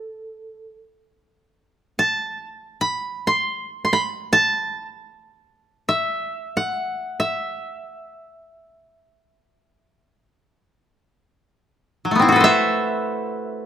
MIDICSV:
0, 0, Header, 1, 2, 480
1, 0, Start_track
1, 0, Tempo, 500000
1, 13113, End_track
2, 0, Start_track
2, 0, Title_t, "Koto"
2, 0, Program_c, 0, 107
2, 0, Note_on_c, 0, 69, 70
2, 718, Note_off_c, 0, 69, 0
2, 1909, Note_on_c, 0, 81, 61
2, 2698, Note_on_c, 0, 83, 59
2, 3115, Note_off_c, 0, 81, 0
2, 3141, Note_on_c, 0, 84, 53
2, 3199, Note_off_c, 0, 83, 0
2, 3688, Note_off_c, 0, 84, 0
2, 3692, Note_on_c, 0, 84, 39
2, 3772, Note_on_c, 0, 83, 54
2, 3829, Note_off_c, 0, 84, 0
2, 4153, Note_on_c, 0, 81, 69
2, 4896, Note_off_c, 0, 83, 0
2, 5620, Note_off_c, 0, 81, 0
2, 5651, Note_on_c, 0, 76, 63
2, 6305, Note_on_c, 0, 78, 49
2, 6905, Note_off_c, 0, 76, 0
2, 6909, Note_on_c, 0, 76, 50
2, 7643, Note_off_c, 0, 78, 0
2, 10184, Note_off_c, 0, 76, 0
2, 11567, Note_on_c, 0, 54, 30
2, 11627, Note_on_c, 0, 57, 31
2, 11668, Note_on_c, 0, 59, 34
2, 11707, Note_on_c, 0, 60, 38
2, 11732, Note_on_c, 0, 64, 36
2, 11765, Note_off_c, 0, 54, 0
2, 11794, Note_on_c, 0, 66, 43
2, 11830, Note_on_c, 0, 69, 41
2, 11864, Note_on_c, 0, 71, 49
2, 11908, Note_on_c, 0, 72, 51
2, 11922, Note_off_c, 0, 60, 0
2, 11941, Note_on_c, 0, 76, 66
2, 11966, Note_off_c, 0, 59, 0
2, 13113, Note_off_c, 0, 57, 0
2, 13113, Note_off_c, 0, 64, 0
2, 13113, Note_off_c, 0, 66, 0
2, 13113, Note_off_c, 0, 69, 0
2, 13113, Note_off_c, 0, 71, 0
2, 13113, Note_off_c, 0, 72, 0
2, 13113, Note_off_c, 0, 76, 0
2, 13113, End_track
0, 0, End_of_file